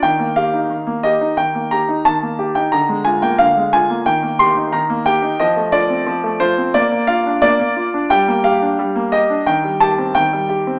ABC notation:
X:1
M:4/4
L:1/16
Q:1/4=89
K:Bb
V:1 name="Grand piano"
g2 f4 e2 g2 b2 a3 g | b2 _a g f2 a2 g2 c'2 b2 g2 | e2 d4 c2 d2 f2 d4 | g2 f4 e2 g2 a2 g4 |]
V:2 name="Grand piano"
E, B, G E E, B, G E E, B, G E E, B, G E | D, _A, F B, D, A, F B, E, B, G E E, B, G E | F, A, F C F, A, F C B, B, F D B, B, F D | G, B, G D G, B, G D E, G, G C E, G, G C |]